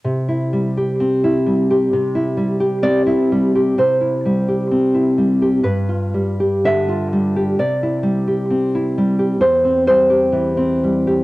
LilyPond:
\new Staff \with { instrumentName = "Nylon-string guitar" } { \time 2/4 \key c \major \tempo 4 = 64 << { r2 | r4 d''4 | c''2 | b'4 e''4 |
d''2 | c''8 c''4. | } \\ { c16 e'16 g16 g'16 c'16 e'16 g16 g'16 | c16 e'16 g16 g'16 c'16 e'16 g16 g'16 | c16 e'16 g16 g'16 c'16 e'16 g16 g'16 | g,16 f'16 g16 g'16 d16 f'16 g16 g'16 |
c16 e'16 g16 g'16 c'16 e'16 g16 g'16 | e,16 c'16 g16 g'16 e16 c'16 g16 g'16 | } >> }